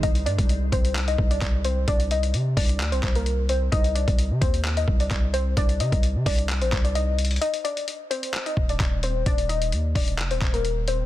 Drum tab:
HH |x-x-x-x-x---x-x-x-x---x-x---x---|x-x-x-x-x---o-x-x-x---x-x---x---|x-x-x-x-x---x-x-x-x---x-x---x---|x-x-x-x-x---o-x-x-x---x-x---xxxx|
CP |----------------x-------x-------|----------------x---x-----------|----------------x-------x-------|----------------x---x-----------|
BD |o-----o-----o-------o---o-------|o-----------o-------o-----------|o-----o-----o-------o---o-------|o-----o-----o-------o-----------|

HH |x-x-x-x-x---x-x-x-x---x-x---x---|x-x-x-x-x---o-x-x-x---x-x---x---|
CP |----------------x-------x-------|----------------x---x-----------|
BD |--------------------o---o-------|o-----------o-------o-----------|